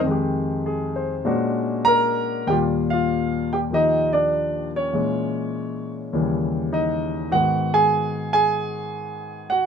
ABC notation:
X:1
M:4/4
L:1/16
Q:"Swing" 1/4=100
K:Bbmix
V:1 name="Grand piano"
z4 A2 c3 z3 [Bb]4 | [Gg]2 [Ff]4 [Gg]2 [Ee]2 [Dd]4 [_D_d]2- | [_D_d]6 z6 [Ee]4 | [_G_g]2 [Aa]4 [Aa]8 [Gg]2 |]
V:2 name="Grand piano" clef=bass
[F,,E,A,G]8 [B,,A,^CD^F]8 | [E,,B,,G,F]8 [E,F,G]8 | [B,,_F,A,_D]8 [E,,_D,F,G,]8 | [A,,E,_C_G]16 |]